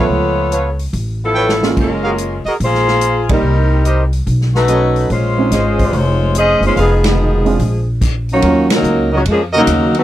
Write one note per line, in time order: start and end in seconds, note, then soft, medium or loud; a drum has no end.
0.00 0.49 F3 soft
0.00 0.49 A3 soft
0.00 0.49 B3 medium
0.00 0.79 B3 medium
0.00 0.79 F4 medium
0.00 0.80 A4 medium
0.00 0.79 C#5 loud
0.00 0.49 E5 medium
0.09 0.89 C#2 medium
0.51 0.70 A4 medium
0.51 0.70 B4 medium
0.51 0.70 C#5 medium
0.51 0.70 F5 medium
0.51 closed hi-hat medium
0.79 open hi-hat soft
0.93 1.72 A1 medium
0.93 kick soft
0.93 open hi-hat soft
1.23 1.74 F3 medium
1.23 1.74 B3 medium
1.23 1.74 E4 medium
1.23 1.74 A4 medium
1.34 1.53 A4 medium
1.34 1.53 B4 medium
1.34 1.53 C#5 medium
1.34 1.53 G5 medium
1.49 snare medium
1.63 2.15 G#3 medium
1.63 2.16 A#3 medium
1.63 2.16 C#4 medium
1.63 2.16 F4 medium
1.63 snare medium
1.76 2.41 F#1 medium
1.76 2.43 G#3 medium
1.76 2.43 F4 medium
1.76 kick medium
1.76 crash medium
1.80 2.44 C#4 medium
1.80 2.44 A#4 medium
2.03 2.13 F#4 medium
2.03 2.13 G#4 medium
2.03 2.13 A#4 medium
2.03 2.13 F5 medium
2.18 closed hi-hat medium
2.45 2.55 F#4 medium
2.45 2.55 G#4 medium
2.45 2.55 A#4 medium
2.45 2.55 D#5 medium
2.45 muted upright bass stroke soft
2.45 open hi-hat soft
2.60 3.39 A#1 medium
2.60 3.27 A#3 medium
2.60 3.27 F4 medium
2.60 3.27 G#4 medium
2.60 3.27 C5 loud
2.60 kick soft
2.60 open hi-hat soft
2.74 snare soft
2.88 snare soft
3.01 closed hi-hat medium
3.29 3.82 G3 medium
3.29 4.10 G3 medium
3.29 3.82 A#3 medium
3.29 4.10 C4 medium
3.29 3.83 D#4 medium
3.29 4.10 D#4 medium
3.29 4.10 A#4 medium
3.29 3.82 D5 medium
3.29 kick medium
3.29 ride medium
3.42 4.22 C2 medium
3.85 4.04 G4 medium
3.85 4.04 A#4 medium
3.85 4.04 C5 medium
3.85 4.04 D#5 medium
3.85 closed hi-hat medium
4.13 open hi-hat soft
4.27 5.06 B1 medium
4.27 kick soft
4.27 open hi-hat soft
4.41 snare soft
4.55 5.06 A3 medium
4.55 5.06 D#4 medium
4.55 5.06 F#4 medium
4.55 5.06 B4 medium
4.55 snare soft
4.68 5.10 F#3 soft
4.68 5.10 A3 soft
4.68 5.10 C#4 soft
4.68 5.10 D#4 medium
4.68 5.10 A4 medium
4.68 5.10 B4 medium
4.68 5.10 C#5 medium
4.68 5.10 D#5 loud
4.68 closed hi-hat medium
4.96 open hi-hat soft
5.10 5.48 A#1 medium
5.10 5.93 G#3 medium
5.10 5.93 C#4 medium
5.10 5.93 F4 medium
5.10 5.93 C5 medium
5.10 kick soft
5.10 open hi-hat soft
5.38 5.50 G#3 medium
5.38 5.50 C4 soft
5.38 5.51 C#4 soft
5.38 5.51 D#4 medium
5.51 5.90 G#1 medium
5.51 6.15 C#4 medium
5.51 6.15 G#4 medium
5.51 6.15 C5 medium
5.51 6.15 D#5 medium
5.51 snare soft
5.51 closed hi-hat medium
5.79 kick medium
5.79 open hi-hat soft
5.93 6.58 F1 medium
5.93 6.35 G#3 medium
5.93 6.35 F4 medium
5.93 6.35 C5 medium
5.93 6.35 C#5 medium
5.93 kick soft
5.93 open hi-hat soft
6.35 6.62 C#4 medium
6.35 6.62 G#4 medium
6.35 6.61 C5 medium
6.35 6.62 D#5 loud
6.35 closed hi-hat medium
6.61 6.74 F#1 medium
6.61 6.75 G#3 medium
6.61 6.75 B3 soft
6.61 6.76 D#4 soft
6.61 open hi-hat soft
6.65 6.77 G#3 medium
6.65 6.77 C#4 medium
6.65 6.77 F4 medium
6.65 6.76 G#4 medium
6.65 6.77 C5 medium
6.76 7.55 F1 medium
6.76 7.04 F3 medium
6.76 7.04 B3 medium
6.76 7.04 D#4 medium
6.76 6.95 G#4 medium
6.76 7.04 G#4 medium
6.76 6.95 B4 medium
6.76 6.95 D#5 medium
6.76 6.95 F5 medium
6.76 kick soft
6.76 open hi-hat soft
7.04 7.56 B2 medium
7.04 7.56 D#3 medium
7.04 7.84 F3 medium
7.04 7.84 G#3 medium
7.04 7.57 B3 medium
7.04 7.57 D#4 medium
7.04 7.84 G#4 medium
7.04 snare medium
7.04 ride medium
7.45 7.58 G#3 medium
7.45 7.58 C4 medium
7.45 7.58 D4 medium
7.45 7.58 F4 medium
7.45 open hi-hat soft
7.59 8.39 A#1 medium
7.59 kick soft
7.59 open hi-hat soft
8.01 kick medium
8.01 closed hi-hat medium
8.01 crash medium
8.29 8.69 F#3 medium
8.29 8.69 A#3 medium
8.29 8.69 C#4 medium
8.29 8.69 D#4 medium
8.29 8.69 F#4 medium
8.29 8.69 C#5 medium
8.29 open hi-hat soft
8.42 8.82 D#2 medium
8.42 8.67 F#3 medium
8.42 8.67 A#3 soft
8.42 8.67 C#4 soft
8.42 8.68 D#4 soft
8.42 8.68 F4 medium
8.42 kick soft
8.42 ride medium
8.70 9.10 C#3 medium
8.70 9.10 F#3 medium
8.70 9.11 F#3 medium
8.70 9.10 A#3 medium
8.70 9.11 C#4 medium
8.70 9.11 D#4 medium
8.70 9.11 A#4 medium
8.70 snare medium
8.70 ride medium
8.83 9.24 C#2 medium
8.83 hi-hat pedal medium
9.12 9.19 A#2 medium
9.12 9.19 C#3 medium
9.12 9.21 D#3 medium
9.12 9.19 F#3 medium
9.12 9.21 C#4 medium
9.12 9.21 F#4 medium
9.12 9.21 A#4 medium
9.12 9.21 C#5 medium
9.12 9.21 D#5 medium
9.16 9.21 A#3 medium
9.25 9.66 F2 medium
9.25 9.40 G#3 medium
9.25 kick soft
9.25 ride medium
9.30 9.42 F3 medium
9.30 9.41 A#3 medium
9.30 9.41 C#4 medium
9.30 9.41 G#4 medium
9.53 9.93 C#3 medium
9.53 9.93 F#3 medium
9.53 9.94 F#3 medium
9.53 9.93 A#3 medium
9.53 9.94 C#4 medium
9.53 9.94 D#4 medium
9.53 9.63 F#4 loud
9.53 9.63 A#4 medium
9.53 9.94 A#4 medium
9.53 9.63 C#5 medium
9.53 9.62 D#5 loud
9.67 10.04 D#2 medium
9.67 kick soft
9.67 hi-hat pedal soft
9.67 ride medium
9.94 10.04 D#3 medium
9.94 10.04 F#3 medium
9.94 10.04 A3 medium
9.94 10.04 B3 loud
9.94 10.04 D#4 medium
9.94 10.04 F#4 medium
9.94 10.04 B4 loud
9.94 ride soft